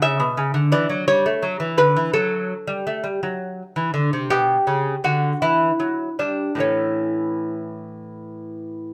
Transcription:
X:1
M:6/8
L:1/16
Q:3/8=55
K:Amix
V:1 name="Lute"
e4 d2 c4 B2 | A4 z8 | G4 F2 E4 D2 | C6 z6 |]
V:2 name="Lute" clef=bass
C, B,, C, D, E, F, G, A, F, E, D, E, | F,3 G, A, G, F,3 E, D, =C, | B,,2 C,2 D,2 E,2 F,2 G,2 | [A,,E,A,]12 |]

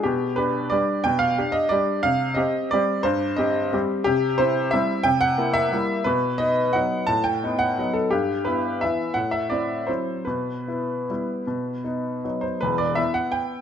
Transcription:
X:1
M:3/4
L:1/8
Q:1/4=176
K:Cm
V:1 name="Upright piano"
G2 =B2 d2 | g f2 e d2 | f2 e2 d2 | c2 e2 z2 |
[K:Em] G2 c2 e2 | g f2 e3 | B2 ^d2 f2 | a g2 f2 A |
G2 B2 e2 | f e d2 c2 | B6- | B4- B c |
B d e f g2 |]
V:2 name="Upright piano"
=B,,2 [DG]2 [G,DG]2 | =B,,2 [DG]2 [G,DG]2 | C,2 [CG]2 [G,CG]2 | G,,2 [CG]2 [G,CG]2 |
[K:Em] C,2 [CE]2 [G,CE]2 | C,2 [_B,E]2 [G,B,E]2 | B,,2 [B,^D]2 [F,B,D]2 | A,,2 [B,^D]2 [F,B,D]2 |
G,,2 [B,E]2 [E,B,E]2 | A,,2 [CE]2 [F,CE]2 | B,,2 [B,E]2 [G,B,E]2 | B,,2 [B,^D]2 [F,B,D]2 |
[E,,,E,,]2 [B,E]4 |]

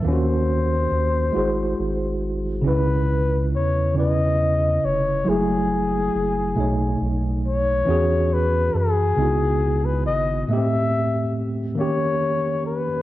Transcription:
X:1
M:6/8
L:1/16
Q:3/8=46
K:C#m
V:1 name="Flugelhorn"
=c8- c2 z2 | B4 c2 d4 c2 | G8- G z c2- | c2 B2 G4- G B d2 |
e4 z2 c4 B2 |]
V:2 name="Tine electric piano"
[D,^A,C=F^F]4- [D,A,C=F^F] z [G,EFG^B]4- [G,EFGB] z | [C,CEB]4- [C,CEB] z [C,CEB]4- [C,CEB] z | [F,A,EG]4- [F,A,EG] z [B,,A,Dc]4- [B,,A,Dc] z | [E,CFG]4- [E,CFG] z [C,B,DEF]4- [C,B,DEF] z |
[A,,A,B,=C=G]4- [A,,A,B,CG] z [D,^A,^CG]4- [D,A,CG] z |]
V:3 name="Analog synth bass" clef=bass
D,,4 D,,2 G,,,2 G,,,4 | C,,4 E,,6 =F,,,2 | F,,,4 F,,,2 B,,,2 B,,,4 | E,,4 F,,2 C,,4 G,,,2 |
z12 |]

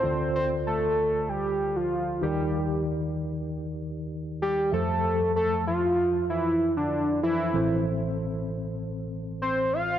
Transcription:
X:1
M:4/4
L:1/16
Q:1/4=96
K:Dm
V:1 name="Analog synth lead"
c2 c2 A4 G3 F3 G2- | G2 z8 z2 G2 A2- | A2 A2 F4 E3 D3 E2- | E2 z8 z2 c2 f2 |]
V:2 name="Tine electric piano"
[D,,D,FAcd]12- [D,,D,FAcd]2 [_E,,_E,_EGBd]2- | [_E,,_E,_EGBd]12- [E,,E,EGBd]2 [F,,F,Ac=e]2- | [F,,F,Ace]12- [F,,F,Ace]2 [F,EAc]2 | [A,,,A,,E,CAc]16 |]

